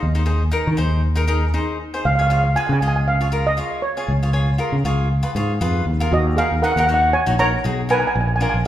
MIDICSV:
0, 0, Header, 1, 4, 480
1, 0, Start_track
1, 0, Tempo, 508044
1, 20, Time_signature, 4, 2, 24, 8
1, 8192, End_track
2, 0, Start_track
2, 0, Title_t, "Steel pan"
2, 0, Program_c, 0, 114
2, 0, Note_on_c, 0, 75, 72
2, 1672, Note_off_c, 0, 75, 0
2, 1940, Note_on_c, 0, 77, 85
2, 2017, Note_off_c, 0, 77, 0
2, 2034, Note_on_c, 0, 77, 66
2, 2080, Note_off_c, 0, 77, 0
2, 2092, Note_on_c, 0, 77, 72
2, 2135, Note_off_c, 0, 77, 0
2, 2146, Note_on_c, 0, 77, 62
2, 2224, Note_off_c, 0, 77, 0
2, 2237, Note_on_c, 0, 77, 71
2, 2291, Note_off_c, 0, 77, 0
2, 2303, Note_on_c, 0, 77, 61
2, 2370, Note_off_c, 0, 77, 0
2, 2418, Note_on_c, 0, 80, 90
2, 2497, Note_off_c, 0, 80, 0
2, 2523, Note_on_c, 0, 80, 67
2, 2566, Note_off_c, 0, 80, 0
2, 2577, Note_on_c, 0, 80, 75
2, 2640, Note_off_c, 0, 80, 0
2, 2652, Note_on_c, 0, 80, 66
2, 2706, Note_off_c, 0, 80, 0
2, 2718, Note_on_c, 0, 80, 74
2, 2786, Note_off_c, 0, 80, 0
2, 2798, Note_on_c, 0, 80, 67
2, 2857, Note_off_c, 0, 80, 0
2, 2907, Note_on_c, 0, 77, 82
2, 3275, Note_on_c, 0, 75, 89
2, 3282, Note_off_c, 0, 77, 0
2, 3598, Note_off_c, 0, 75, 0
2, 3612, Note_on_c, 0, 73, 67
2, 4061, Note_off_c, 0, 73, 0
2, 5787, Note_on_c, 0, 66, 68
2, 5797, Note_on_c, 0, 75, 86
2, 6007, Note_off_c, 0, 66, 0
2, 6014, Note_on_c, 0, 68, 71
2, 6028, Note_on_c, 0, 77, 85
2, 6035, Note_off_c, 0, 75, 0
2, 6240, Note_off_c, 0, 68, 0
2, 6256, Note_on_c, 0, 70, 66
2, 6265, Note_on_c, 0, 78, 85
2, 6271, Note_off_c, 0, 77, 0
2, 6328, Note_off_c, 0, 70, 0
2, 6340, Note_off_c, 0, 78, 0
2, 6351, Note_on_c, 0, 78, 66
2, 6413, Note_off_c, 0, 78, 0
2, 6424, Note_on_c, 0, 78, 78
2, 6471, Note_off_c, 0, 78, 0
2, 6482, Note_on_c, 0, 78, 67
2, 6545, Note_off_c, 0, 78, 0
2, 6557, Note_on_c, 0, 78, 78
2, 6620, Note_off_c, 0, 78, 0
2, 6631, Note_on_c, 0, 78, 65
2, 6695, Note_off_c, 0, 78, 0
2, 6739, Note_on_c, 0, 73, 73
2, 6740, Note_on_c, 0, 80, 93
2, 6963, Note_off_c, 0, 73, 0
2, 6963, Note_off_c, 0, 80, 0
2, 6984, Note_on_c, 0, 82, 107
2, 6991, Note_on_c, 0, 73, 81
2, 7429, Note_off_c, 0, 82, 0
2, 7432, Note_off_c, 0, 73, 0
2, 7469, Note_on_c, 0, 71, 73
2, 7471, Note_on_c, 0, 80, 98
2, 7536, Note_off_c, 0, 71, 0
2, 7541, Note_off_c, 0, 80, 0
2, 7553, Note_on_c, 0, 80, 71
2, 7617, Note_off_c, 0, 80, 0
2, 7628, Note_on_c, 0, 80, 75
2, 7686, Note_off_c, 0, 80, 0
2, 7698, Note_on_c, 0, 80, 59
2, 7744, Note_off_c, 0, 80, 0
2, 7755, Note_on_c, 0, 80, 68
2, 7811, Note_off_c, 0, 80, 0
2, 7822, Note_on_c, 0, 80, 58
2, 7886, Note_off_c, 0, 80, 0
2, 7897, Note_on_c, 0, 80, 71
2, 7948, Note_off_c, 0, 80, 0
2, 7959, Note_on_c, 0, 80, 64
2, 8015, Note_off_c, 0, 80, 0
2, 8026, Note_on_c, 0, 80, 75
2, 8102, Note_off_c, 0, 80, 0
2, 8192, End_track
3, 0, Start_track
3, 0, Title_t, "Cavaquinho"
3, 0, Program_c, 1, 24
3, 140, Note_on_c, 1, 63, 66
3, 144, Note_on_c, 1, 68, 52
3, 151, Note_on_c, 1, 72, 63
3, 211, Note_off_c, 1, 63, 0
3, 214, Note_off_c, 1, 68, 0
3, 214, Note_off_c, 1, 72, 0
3, 242, Note_on_c, 1, 63, 65
3, 244, Note_on_c, 1, 68, 66
3, 251, Note_on_c, 1, 72, 60
3, 402, Note_off_c, 1, 63, 0
3, 404, Note_off_c, 1, 68, 0
3, 405, Note_off_c, 1, 72, 0
3, 486, Note_on_c, 1, 63, 81
3, 493, Note_on_c, 1, 68, 60
3, 499, Note_on_c, 1, 70, 90
3, 645, Note_off_c, 1, 63, 0
3, 646, Note_off_c, 1, 68, 0
3, 650, Note_off_c, 1, 70, 0
3, 728, Note_on_c, 1, 63, 77
3, 734, Note_on_c, 1, 68, 69
3, 739, Note_on_c, 1, 72, 83
3, 951, Note_off_c, 1, 63, 0
3, 954, Note_off_c, 1, 68, 0
3, 957, Note_off_c, 1, 72, 0
3, 1091, Note_on_c, 1, 63, 77
3, 1095, Note_on_c, 1, 68, 72
3, 1105, Note_on_c, 1, 70, 84
3, 1166, Note_off_c, 1, 63, 0
3, 1168, Note_off_c, 1, 68, 0
3, 1173, Note_off_c, 1, 70, 0
3, 1204, Note_on_c, 1, 63, 76
3, 1210, Note_on_c, 1, 68, 68
3, 1212, Note_on_c, 1, 70, 85
3, 1363, Note_off_c, 1, 63, 0
3, 1364, Note_off_c, 1, 68, 0
3, 1367, Note_off_c, 1, 70, 0
3, 1452, Note_on_c, 1, 63, 84
3, 1456, Note_on_c, 1, 68, 65
3, 1462, Note_on_c, 1, 72, 72
3, 1674, Note_off_c, 1, 63, 0
3, 1674, Note_off_c, 1, 68, 0
3, 1676, Note_off_c, 1, 72, 0
3, 1831, Note_on_c, 1, 72, 78
3, 1833, Note_on_c, 1, 68, 62
3, 1842, Note_on_c, 1, 63, 55
3, 1940, Note_off_c, 1, 68, 0
3, 1941, Note_off_c, 1, 63, 0
3, 1942, Note_off_c, 1, 72, 0
3, 2067, Note_on_c, 1, 73, 73
3, 2069, Note_on_c, 1, 68, 54
3, 2074, Note_on_c, 1, 65, 58
3, 2134, Note_off_c, 1, 65, 0
3, 2134, Note_off_c, 1, 68, 0
3, 2135, Note_off_c, 1, 73, 0
3, 2173, Note_on_c, 1, 65, 71
3, 2181, Note_on_c, 1, 68, 62
3, 2184, Note_on_c, 1, 73, 63
3, 2328, Note_off_c, 1, 65, 0
3, 2330, Note_off_c, 1, 73, 0
3, 2331, Note_off_c, 1, 68, 0
3, 2419, Note_on_c, 1, 65, 71
3, 2427, Note_on_c, 1, 68, 57
3, 2430, Note_on_c, 1, 71, 77
3, 2571, Note_off_c, 1, 65, 0
3, 2572, Note_off_c, 1, 68, 0
3, 2575, Note_off_c, 1, 71, 0
3, 2665, Note_on_c, 1, 65, 65
3, 2668, Note_on_c, 1, 68, 61
3, 2673, Note_on_c, 1, 75, 69
3, 2879, Note_off_c, 1, 65, 0
3, 2882, Note_off_c, 1, 68, 0
3, 2882, Note_off_c, 1, 75, 0
3, 3030, Note_on_c, 1, 65, 65
3, 3035, Note_on_c, 1, 68, 49
3, 3037, Note_on_c, 1, 73, 68
3, 3096, Note_off_c, 1, 65, 0
3, 3096, Note_off_c, 1, 68, 0
3, 3099, Note_off_c, 1, 73, 0
3, 3135, Note_on_c, 1, 65, 66
3, 3139, Note_on_c, 1, 68, 52
3, 3144, Note_on_c, 1, 70, 78
3, 3288, Note_off_c, 1, 68, 0
3, 3289, Note_off_c, 1, 65, 0
3, 3292, Note_off_c, 1, 70, 0
3, 3372, Note_on_c, 1, 65, 65
3, 3379, Note_on_c, 1, 68, 66
3, 3388, Note_on_c, 1, 73, 62
3, 3593, Note_off_c, 1, 65, 0
3, 3597, Note_off_c, 1, 68, 0
3, 3599, Note_off_c, 1, 73, 0
3, 3750, Note_on_c, 1, 73, 78
3, 3754, Note_on_c, 1, 68, 65
3, 3761, Note_on_c, 1, 65, 62
3, 3886, Note_off_c, 1, 68, 0
3, 3887, Note_off_c, 1, 65, 0
3, 3887, Note_off_c, 1, 73, 0
3, 3993, Note_on_c, 1, 65, 56
3, 3997, Note_on_c, 1, 68, 58
3, 3998, Note_on_c, 1, 73, 64
3, 4057, Note_off_c, 1, 65, 0
3, 4058, Note_off_c, 1, 73, 0
3, 4059, Note_off_c, 1, 68, 0
3, 4093, Note_on_c, 1, 73, 77
3, 4097, Note_on_c, 1, 68, 61
3, 4099, Note_on_c, 1, 65, 62
3, 4247, Note_off_c, 1, 65, 0
3, 4248, Note_off_c, 1, 68, 0
3, 4249, Note_off_c, 1, 73, 0
3, 4330, Note_on_c, 1, 65, 80
3, 4335, Note_on_c, 1, 68, 69
3, 4341, Note_on_c, 1, 70, 75
3, 4487, Note_off_c, 1, 65, 0
3, 4487, Note_off_c, 1, 68, 0
3, 4488, Note_off_c, 1, 70, 0
3, 4582, Note_on_c, 1, 65, 81
3, 4587, Note_on_c, 1, 68, 59
3, 4588, Note_on_c, 1, 73, 84
3, 4798, Note_off_c, 1, 65, 0
3, 4799, Note_off_c, 1, 68, 0
3, 4801, Note_off_c, 1, 73, 0
3, 4938, Note_on_c, 1, 65, 76
3, 4941, Note_on_c, 1, 68, 64
3, 4945, Note_on_c, 1, 71, 75
3, 5010, Note_off_c, 1, 65, 0
3, 5012, Note_off_c, 1, 68, 0
3, 5012, Note_off_c, 1, 71, 0
3, 5063, Note_on_c, 1, 65, 77
3, 5067, Note_on_c, 1, 68, 70
3, 5073, Note_on_c, 1, 73, 77
3, 5212, Note_off_c, 1, 65, 0
3, 5215, Note_off_c, 1, 68, 0
3, 5215, Note_off_c, 1, 73, 0
3, 5300, Note_on_c, 1, 65, 76
3, 5304, Note_on_c, 1, 68, 69
3, 5308, Note_on_c, 1, 71, 90
3, 5517, Note_off_c, 1, 65, 0
3, 5519, Note_off_c, 1, 68, 0
3, 5521, Note_off_c, 1, 71, 0
3, 5672, Note_on_c, 1, 65, 77
3, 5679, Note_on_c, 1, 70, 79
3, 5682, Note_on_c, 1, 68, 72
3, 5782, Note_off_c, 1, 65, 0
3, 5783, Note_off_c, 1, 70, 0
3, 5786, Note_off_c, 1, 68, 0
3, 6027, Note_on_c, 1, 63, 72
3, 6029, Note_on_c, 1, 66, 63
3, 6034, Note_on_c, 1, 70, 69
3, 6174, Note_off_c, 1, 63, 0
3, 6176, Note_off_c, 1, 66, 0
3, 6176, Note_off_c, 1, 70, 0
3, 6270, Note_on_c, 1, 63, 76
3, 6276, Note_on_c, 1, 66, 69
3, 6276, Note_on_c, 1, 68, 76
3, 6343, Note_off_c, 1, 63, 0
3, 6343, Note_off_c, 1, 68, 0
3, 6345, Note_off_c, 1, 66, 0
3, 6398, Note_on_c, 1, 63, 70
3, 6408, Note_on_c, 1, 66, 62
3, 6410, Note_on_c, 1, 70, 79
3, 6460, Note_off_c, 1, 63, 0
3, 6462, Note_off_c, 1, 66, 0
3, 6466, Note_off_c, 1, 70, 0
3, 6507, Note_on_c, 1, 63, 70
3, 6512, Note_on_c, 1, 66, 65
3, 6519, Note_on_c, 1, 73, 65
3, 6721, Note_off_c, 1, 63, 0
3, 6724, Note_off_c, 1, 73, 0
3, 6725, Note_off_c, 1, 66, 0
3, 6863, Note_on_c, 1, 63, 78
3, 6868, Note_on_c, 1, 66, 60
3, 6876, Note_on_c, 1, 73, 79
3, 6933, Note_off_c, 1, 63, 0
3, 6933, Note_off_c, 1, 66, 0
3, 6939, Note_off_c, 1, 73, 0
3, 6982, Note_on_c, 1, 63, 75
3, 6987, Note_on_c, 1, 66, 59
3, 6989, Note_on_c, 1, 70, 83
3, 7132, Note_off_c, 1, 63, 0
3, 7133, Note_off_c, 1, 66, 0
3, 7136, Note_off_c, 1, 70, 0
3, 7219, Note_on_c, 1, 63, 72
3, 7227, Note_on_c, 1, 66, 56
3, 7229, Note_on_c, 1, 68, 82
3, 7371, Note_off_c, 1, 63, 0
3, 7373, Note_off_c, 1, 66, 0
3, 7376, Note_off_c, 1, 68, 0
3, 7452, Note_on_c, 1, 63, 71
3, 7462, Note_on_c, 1, 66, 50
3, 7465, Note_on_c, 1, 70, 77
3, 7697, Note_off_c, 1, 63, 0
3, 7698, Note_off_c, 1, 66, 0
3, 7702, Note_off_c, 1, 70, 0
3, 7941, Note_on_c, 1, 62, 69
3, 7944, Note_on_c, 1, 65, 68
3, 7952, Note_on_c, 1, 70, 68
3, 8092, Note_off_c, 1, 62, 0
3, 8094, Note_off_c, 1, 65, 0
3, 8096, Note_off_c, 1, 70, 0
3, 8192, End_track
4, 0, Start_track
4, 0, Title_t, "Fretless electric bass"
4, 0, Program_c, 2, 35
4, 25, Note_on_c, 2, 39, 78
4, 487, Note_off_c, 2, 39, 0
4, 635, Note_on_c, 2, 51, 89
4, 717, Note_off_c, 2, 51, 0
4, 741, Note_on_c, 2, 39, 75
4, 1472, Note_off_c, 2, 39, 0
4, 1937, Note_on_c, 2, 37, 86
4, 2402, Note_off_c, 2, 37, 0
4, 2543, Note_on_c, 2, 49, 89
4, 2629, Note_off_c, 2, 49, 0
4, 2658, Note_on_c, 2, 37, 78
4, 3391, Note_off_c, 2, 37, 0
4, 3858, Note_on_c, 2, 37, 85
4, 4322, Note_off_c, 2, 37, 0
4, 4462, Note_on_c, 2, 49, 86
4, 4549, Note_off_c, 2, 49, 0
4, 4576, Note_on_c, 2, 37, 75
4, 4943, Note_off_c, 2, 37, 0
4, 5054, Note_on_c, 2, 44, 70
4, 5272, Note_off_c, 2, 44, 0
4, 5298, Note_on_c, 2, 41, 74
4, 5515, Note_off_c, 2, 41, 0
4, 5535, Note_on_c, 2, 39, 71
4, 5753, Note_off_c, 2, 39, 0
4, 5778, Note_on_c, 2, 39, 106
4, 6060, Note_off_c, 2, 39, 0
4, 6154, Note_on_c, 2, 39, 82
4, 6236, Note_off_c, 2, 39, 0
4, 6386, Note_on_c, 2, 39, 84
4, 6753, Note_off_c, 2, 39, 0
4, 6869, Note_on_c, 2, 34, 85
4, 7137, Note_off_c, 2, 34, 0
4, 7224, Note_on_c, 2, 35, 90
4, 7589, Note_off_c, 2, 35, 0
4, 7704, Note_on_c, 2, 34, 98
4, 7984, Note_off_c, 2, 34, 0
4, 8067, Note_on_c, 2, 34, 82
4, 8153, Note_off_c, 2, 34, 0
4, 8192, End_track
0, 0, End_of_file